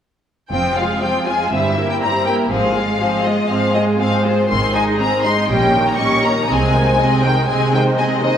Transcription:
0.51 double bass section F1, cello section F2, viola section F3 C4, violin section F4 C5 G5
0.76 viola section G#3 F4, violin section G#4 F5
1.01 cello section F2, viola section F3 C4, violin section F4 C5 G5
1.26 viola section G#3 F4, violin section G#4 F5 G#5
1.52 double bass section G1, cello section G2, viola section G3 C4, violin section E4 C5 E5
1.78 viola section A#3 E4, violin section G4 A#4
1.91 violin section G5
2.01 cello section G2, viola section G3 C4, violin section E4 C5 A#5
2.25 viola section A#3 E4, violin section G4 A#4 G5
2.50 double bass section G#1, cello section G#2, viola section F3 C4, violin section G#4 C5 F5
2.75 viola section G#3, violin section F4 G#4
3.00 cello section G#2, viola section F3 C4, violin section G#4 C5
3.26 viola section G#3, violin section F4 G#4 D#5
3.50 cello section G#2, viola section F3 C4, violin section G#4 C5 F5
3.74 viola section G#3, violin section F4 G#4 D#5
3.99 cello section G#2, viola section F3 C4, violin section G#4 C5 F5
4.24 viola section G#3, violin section F4 G#4 C5
4.48 double bass section G#1, cello section G#2, viola section D#3 C4, violin section G#4 C5 C6
4.73 viola section G#3 D#4, violin section D#4 D#5 G#5
4.97 cello section G#2, viola section D#3 C4, violin section G#4 C5 A#5
5.23 viola section G#3 D#4, violin section D#4 D#5 C6
5.48 double bass section A#1, cello section A#2, viola section G3 C#4, violin section G4 D#5 G5
5.73 viola section D#3 A#3, violin section D#4 C#5
5.87 violin section A#5
5.98 cello section A#2, viola section G3 C#4, violin section G4 D#5 C#6
6.23 viola section D#3 A#3, violin section D#4 C#5 A#5
6.49 double bass section C2, cello section C3, viola section G#3 C4, violin section G#4 D#5 G#5
6.73 viola section D#3 G#3, violin section D#4 C5
6.98 cello section C3, viola section G#3 C4, violin section G#4 D#5
7.24 viola section D#3 G#3, violin section D#4 C5 G5
7.48 cello section C3, viola section G#3 C4, violin section G#4 D#5 G#5
7.73 viola section D#3 G#3, violin section D#4 C5 G5
7.98 cello section C3, viola section G#3 C4, violin section G#4 D#5 G#5
8.22 viola section D#3 G#3, violin section D#4 C5 D#5

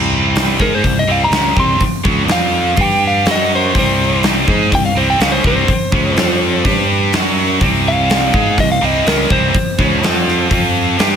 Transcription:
Already playing: fingered electric bass C2, distorted electric guitar C3 G3 C4
0.36 snare, open hi-hat
0.59 fingered electric bass G#2, distorted electric guitar G#3 D#4 G#4, lead electric guitar A#4, kick, snare
0.75 lead electric guitar C5
0.84 fingered electric bass C2, distorted electric guitar C3 G3, kick, open hi-hat
0.99 lead electric guitar D#5
1.07 fingered electric bass C2, distorted electric guitar C3 G3 C4
1.12 lead electric guitar F5
1.24 lead electric guitar A#5
1.30 fingered electric bass C#2, distorted electric guitar C#3 G#3 C#4, snare, open hi-hat
1.56 fingered electric bass C2, distorted electric guitar C3 G3 C4, lead electric guitar C6, kick
1.80 muted fingered electric bass stroke, muted distorted electric guitar stroke, kick, open hi-hat
2.04 fingered electric bass C#2, distorted electric guitar C#3 G#3 C#4, kick
2.27 fingered electric bass F2, distorted electric guitar F3 C4 F4, snare, open hi-hat
2.32 lead electric guitar F5
2.77 fingered electric bass G2, distorted electric guitar G3 D4 G4, kick, open hi-hat
2.81 lead electric guitar G5
3.07 lead electric guitar F5
3.26 fingered electric bass F#2, distorted electric guitar F#3 C#4 F#4, snare, open hi-hat
3.31 lead electric guitar D#5
3.55 lead electric guitar C5
3.75 fingered electric bass C2, distorted electric guitar C3 G3 C4, lead electric guitar C5, kick, open hi-hat
4.23 snare, open hi-hat
4.47 fingered electric bass G#2, distorted electric guitar G#3 D#4 G#4, kick
4.72 fingered electric bass C2, distorted electric guitar C3 G3, lead electric guitar G5, kick, open hi-hat
4.86 lead electric guitar F5
4.95 fingered electric bass C2, distorted electric guitar C3 G3 C4, lead electric guitar C5
5.10 lead electric guitar G5
5.19 fingered electric bass C#2, distorted electric guitar C#3 G#3 C#4, lead electric guitar F5, snare, open hi-hat
5.32 lead electric guitar C5
5.44 fingered electric bass C2, distorted electric guitar C3 G3 C4, lead electric guitar C5, kick
5.68 muted fingered electric bass stroke, muted distorted electric guitar stroke, kick, open hi-hat
5.92 fingered electric bass C#2, distorted electric guitar C#3 G#3 C#4, kick
6.16 fingered electric bass F2, distorted electric guitar F3 C4 F4, snare, open hi-hat
6.65 fingered electric bass G2, distorted electric guitar G3 D4 G4, kick, open hi-hat
7.13 fingered electric bass F#2, distorted electric guitar F#3 C#4 F#4, snare, open hi-hat
7.61 fingered electric bass C2, distorted electric guitar C3 G3 C4, kick, open hi-hat
7.88 lead electric guitar F5
8.10 snare, open hi-hat
8.33 fingered electric bass G#2, distorted electric guitar G#3 D#4 G#4, kick
8.58 fingered electric bass C2, distorted electric guitar C3 G3, lead electric guitar D#5, kick, open hi-hat
8.72 lead electric guitar F5
8.81 fingered electric bass C2, distorted electric guitar C3 G3 C4, lead electric guitar D#5
9.06 fingered electric bass C#2, distorted electric guitar C#3 G#3 C#4, lead electric guitar A#4, snare, open hi-hat
9.30 fingered electric bass C2, distorted electric guitar C3 G3 C4, lead electric guitar C5, kick
9.54 muted distorted electric guitar stroke, muted fingered electric bass stroke, kick, open hi-hat
9.78 fingered electric bass C#2, distorted electric guitar C#3 G#3 C#4, kick
10.03 fingered electric bass F2, distorted electric guitar F3 C4 F4, snare, open hi-hat
10.28 snare
10.50 fingered electric bass F2, distorted electric guitar F3 C4 F4, kick, open hi-hat
10.97 fingered electric bass G2, distorted electric guitar G3 D4 G4, snare, open hi-hat

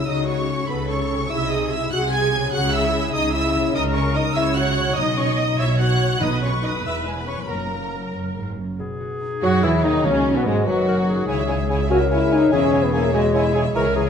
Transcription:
Already playing: harp C#3 C#4 D#4
0.00 harp F#4 A4
0.06 double bass section C#2, cello section C#3, french horn section D#4, viola section F#4, violin section D#5 D#6
0.26 french horn section C#4, violin section C#5 C#6
0.68 double bass section C#2, cello section C#3, french horn section B3, viola section A4, violin section B4 B5
0.89 french horn section C#4, violin section C#5 C#6
1.13 harp C3
1.17 harp D#4
1.22 harp F#4
1.26 french horn section E4, harp G#4, violin section E6
1.31 double bass section C2, cello section C3, viola section G#4, violin section E5
1.51 french horn section D#4, violin section D#5 D#6
1.71 french horn section E4, violin section E5 E6
1.91 double bass section C2, cello section C3, french horn section F#4, viola section G#4, violin section F#5 F#6
2.12 french horn section G#4, violin section G#5 G#6
2.35 harp C#3
2.39 harp C#4
2.44 harp E4
2.49 harp G#4
2.53 double bass section C#2, cello section C#3, french horn section F#4, violin section F#5 F#6
2.73 french horn section E4, violin section E5 E6
3.13 double bass section C#2, cello section C#3, french horn section D#4, violin section D#5 D#6
3.34 french horn section E4, violin section E5 E6
3.57 harp C#3
3.61 harp A#3
3.66 harp E4
3.70 french horn section D#4, harp F#4
3.75 double bass section C#2, cello section C#3, viola section A#4, violin section D#5 D#6
3.95 french horn section C#4, violin section C#5 C#6
4.15 french horn section D#4, violin section D#5 D#6
4.35 double bass section C#2, cello section C#3, french horn section E4, viola section C#5, violin section E5 E6
4.56 french horn section F#4, violin section F#5 F#6
4.79 harp B2
4.84 harp B3
4.88 harp D#4
4.93 harp F#4
4.97 double bass section B1, timpani B2, cello section B2, french horn section D#4, violin section D#5 D#6, viola section D#5
5.17 french horn section C#4, violin section C#5 C#6
5.39 french horn section D#4, violin section D#5 D#6
5.59 double bass section B1, cello section B2, french horn section E4, viola section C#5, violin section E5 E6
5.79 french horn section F#4, violin section F#5 F#6
6.03 harp B2
6.08 harp B3
6.12 harp F#4
6.17 cello section B2, french horn section D#4, harp A4
6.21 double bass section B1, timpani B2, viola section B4, violin section D#5 D#6
6.41 french horn section C#4, violin section C#5 C#6
6.62 french horn section D#4, violin section D#5 D#6
6.67 harp E2
6.72 harp B3
6.76 harp E4
6.84 double bass section E1, cello section E2, french horn section E4, violin section E5 E6
7.05 french horn section G#3, violin section G#4 G#5
7.16 french horn section B3, violin section B4 B5
7.27 french horn section C#4, violin section C#5 C#6
7.32 harp F#2
7.36 harp F#3, french horn section B3, violin section B4
7.41 harp C#4, violin section B5
7.45 french horn section A#3, harp F#4
7.50 double bass section F#1, timpani F#2, cello section F#2, viola section A#4, violin section A#4 A#5
8.14 double bass section F#1, cello section F#2
8.37 cello section G#2
8.58 cello section F#2
8.79 harp B2, clarinet G#4
9.00 harp F#4
9.21 harp D#4
9.42 double bass section F#2, cello section F#3, bassoon F#3, harp F#4, viola section F#4, flute F#4, violin section F#4, french horn section F#4
9.63 double bass section E2, cello section E3, bassoon E3, harp F#3, viola section E4, violin section E4, french horn section E4, flute E4
9.83 double bass section D#2, cello section D#3, bassoon D#3, viola section D#4, flute D#4, french horn section D#4, violin section D#4, harp F#4
10.04 double bass section C#2, cello section C#3, bassoon C#3, timpani D#3, harp D#3, viola section C#4, flute C#4, violin section C#4, french horn section C#4, clarinet F#4
10.26 harp F#4
10.35 cello section B2, bassoon B2, viola section B3, violin section B3, french horn section B3, flute B4
10.45 double bass section G#1, cello section G#2, bassoon G#2, violin section G#3, viola section G#3, french horn section G#3, flute G#4, harp B4
10.66 double bass section F#1, cello section F#2, bassoon F#2, viola section F#3, french horn section F#3, flute F#4, harp F#4, violin section F#4, clarinet B4
10.88 harp D#4, clarinet A#4
11.08 harp F#4, clarinet G#4
11.27 cello section C#2, double bass section C#2, harp C#3, bassoon C#3, viola section E4, violin section C#5 G#5, flute G#5
11.39 viola section G#4, violin section E5
11.48 bassoon C#3, viola section E4, harp C#5, violin section C#5 G#5, flute G#5
11.59 viola section G#4, violin section E5
11.69 bassoon C#3, harp E4, viola section E4, violin section C#5 G#5, flute G#5
11.80 viola section G#4, violin section E5
11.90 bassoon C#3, viola section E4, french horn section F#4, clarinet A#4, violin section C#5 G#5, harp C#5, flute G#5
12.01 viola section G#4, violin section E5
12.11 bassoon C#3, harp G#3, viola section E4, french horn section E4, violin section C#5 G#5, flute G#5
12.21 viola section G#4, violin section E5
12.31 bassoon C#3, french horn section D#4, viola section E4, violin section C#5 G#5, harp C#5, flute G#5
12.41 viola section G#4, violin section E5
12.51 double bass section E1, cello section E2, bassoon C#3, harp E3, french horn section C#4, viola section E4, clarinet G#4, violin section C#5 G#5, flute G#5
12.62 viola section G#4, violin section E5
12.73 bassoon C#3, viola section E4, harp G#4, violin section C#5 G#5, flute G#5
12.82 french horn section B3, viola section G#4, violin section E5
12.92 bassoon C#3, french horn section A#3, viola section E4, violin section C#5 G#5, harp C#5, flute G#5
13.03 viola section G#4, violin section E5
13.13 bassoon C#3, french horn section G#3, viola section E4, clarinet F#4, harp G#4, violin section C#5 G#5, flute G#5
13.23 viola section G#4, violin section E5
13.33 bassoon C#3, clarinet E4, harp E4, viola section E4, violin section C#5 G#5, flute G#5
13.44 viola section G#4, violin section E5
13.55 bassoon C#3, viola section E4, harp G#4, clarinet G#4, violin section C#5 G#5, flute G#5
13.65 viola section G#4, violin section E5
13.74 double bass section C#2, cello section C#2, harp C#3, bassoon E3, viola section G#4, clarinet A#4, violin section C#5 G#5, flute A#5
13.85 violin section G#4 E5, viola section A#4
13.95 bassoon E3, viola section G#4, clarinet G#4, harp A#4, violin section C#5 G#5, flute A#5
14.06 violin section G#4 E5, viola section A#4

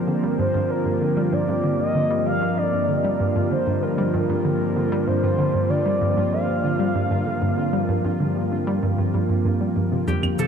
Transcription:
Already playing: analog synth pad D3 F3 A#3 G4 A#4, synth texture C4 C5
0.07 synth drone G2, synth arpeggio sound D3, synth texture F4
0.23 synth arpeggio sound G3
0.39 synth arpeggio sound G2, analog synth lead C5
0.54 synth arpeggio sound G2
0.70 synth arpeggio sound D3, analog synth lead A#4
0.86 synth arpeggio sound G2
1.01 synth arpeggio sound D3
1.17 synth arpeggio sound G3
1.33 synth arpeggio sound G2, analog synth lead D5
1.48 synth arpeggio sound G2
1.64 synth arpeggio sound D3
1.79 synth arpeggio sound G2, analog synth lead D#5
1.95 synth arpeggio sound D3
2.11 synth arpeggio sound G3
2.26 synth arpeggio sound G2, analog synth lead F5
2.42 synth arpeggio sound G2
2.57 synth arpeggio sound D3, analog synth lead D5
2.73 synth arpeggio sound G2
2.89 synth arpeggio sound D3
3.04 synth arpeggio sound G3
3.20 synth arpeggio sound G2
3.36 synth arpeggio sound G2
3.51 synth arpeggio sound D3, analog synth lead C5
3.67 synth arpeggio sound G2
3.82 synth arpeggio sound D3, analog synth lead A#4
3.98 synth arpeggio sound G3
4.14 synth arpeggio sound G2
4.29 synth arpeggio sound G2
4.45 synth arpeggio sound D3, analog synth lead A#4
4.61 synth arpeggio sound G2
4.76 synth arpeggio sound D3
4.92 synth arpeggio sound G3
5.07 synth arpeggio sound G2, analog synth lead C5
5.23 synth arpeggio sound G2
5.39 synth arpeggio sound D3
5.54 synth arpeggio sound G2
5.70 synth arpeggio sound D3, analog synth lead D5
5.86 synth arpeggio sound G3
6.01 synth arpeggio sound G2
6.17 synth arpeggio sound G2
6.32 synth arpeggio sound D3, analog synth lead F5
6.48 synth arpeggio sound G2
6.64 synth arpeggio sound D3
6.79 synth arpeggio sound G3
6.95 synth arpeggio sound G2
7.11 synth arpeggio sound G2
7.26 synth arpeggio sound D3
7.42 synth arpeggio sound G2
7.58 synth arpeggio sound D3
7.73 synth arpeggio sound G3
7.89 synth arpeggio sound G2
8.05 synth arpeggio sound G2
8.20 synth arpeggio sound D3
8.36 synth arpeggio sound G2
8.52 synth arpeggio sound D3
8.67 synth arpeggio sound G3
8.83 synth arpeggio sound G2
8.98 synth arpeggio sound G2
9.14 synth arpeggio sound G2
9.30 synth arpeggio sound G2
9.45 synth arpeggio sound G2
9.61 synth arpeggio sound G3
9.76 synth arpeggio sound G2
9.92 synth arpeggio sound C3
10.07 synth arpeggio sound F2, synth drone F2, analog synth pad F3, synth texture F4 F5, harp G4, shaker
10.23 synth arpeggio sound F2, claves, shaker
10.31 analog synth pad A3
10.39 synth arpeggio sound C3, harp A4, shaker
10.44 analog synth pad C4

